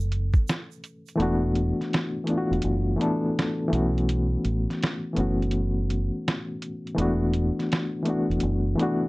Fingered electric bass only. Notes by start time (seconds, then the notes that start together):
Already playing: F#1
1.19 E1
2.51 E1
2.64 F#1
3.73 B1
4.45 A1
5.17 F#1
6.98 E1
8.30 E1
8.43 F#1